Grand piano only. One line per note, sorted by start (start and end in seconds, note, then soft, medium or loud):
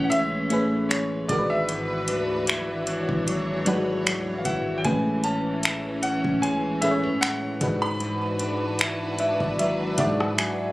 0.04 0.11 F#5 medium
0.10 0.92 E5 medium
0.89 1.30 C#5 medium
1.28 1.49 D5 medium
1.50 3.83 E5 medium
4.38 4.45 F5 medium
4.45 4.79 F#5 medium
4.78 4.84 G5 medium
4.85 5.25 G#5 loud
5.24 6.05 A5 medium
6.03 6.44 F#5 medium
6.42 6.83 G#5 loud
6.82 7.22 E5 medium
7.21 7.84 F#5 loud
7.82 9.36 B5 loud